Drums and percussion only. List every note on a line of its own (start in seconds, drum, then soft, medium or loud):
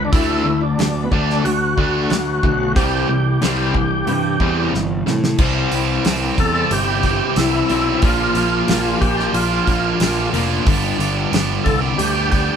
0.13 kick loud
0.13 open hi-hat soft
0.79 snare loud
0.79 open hi-hat soft
1.12 kick medium
1.30 snare soft
1.45 open hi-hat soft
1.78 kick medium
2.10 snare medium
2.10 open hi-hat soft
2.43 kick medium
2.76 kick loud
2.76 open hi-hat medium
3.42 snare medium
3.42 open hi-hat soft
3.74 kick medium
4.07 open hi-hat soft
4.40 kick medium
4.74 snare soft
5.07 snare medium
5.24 snare medium
5.38 kick loud
5.38 crash loud
5.72 open hi-hat soft
6.05 snare loud
6.05 open hi-hat medium
6.38 kick medium
6.38 open hi-hat soft
6.71 open hi-hat medium
7.03 kick medium
7.03 open hi-hat soft
7.36 snare medium
7.36 open hi-hat medium
7.70 open hi-hat soft
8.02 kick loud
8.02 open hi-hat medium
8.35 open hi-hat soft
8.68 snare loud
8.68 open hi-hat medium
9.02 kick medium
9.02 open hi-hat soft
9.19 snare soft
9.34 open hi-hat medium
9.67 kick medium
9.67 open hi-hat medium
10.00 snare loud
10.00 open hi-hat medium
10.34 open hi-hat medium
10.67 kick loud
10.67 open hi-hat medium
11.00 open hi-hat medium
11.33 snare loud
11.33 open hi-hat medium
11.66 kick medium
11.66 open hi-hat soft
11.99 open hi-hat medium
12.32 kick medium
12.32 open hi-hat soft